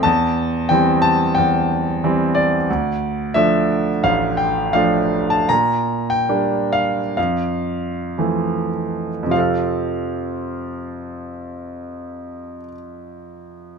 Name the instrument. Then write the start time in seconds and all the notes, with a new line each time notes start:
grand piano
0.03 E2 A5
0.69 E3 G3 C4 G5
1.02 A5
1.35 E2 G5
2.04 E3 G3 C4
2.35 D5
2.70 D2
3.34 F3 A3 D4 E5
4.04 A1 F5
4.37 G5
4.73 F3 A3 D4 F5
5.30 A5
5.49 A#2 A#5
6.10 G5
6.29 G3 A#3 D4
6.73 F5
7.17 F2 F5
8.18 E3 F3 A3
9.23 F2 C3
9.30 F3 C4 F5
9.36 A4 F5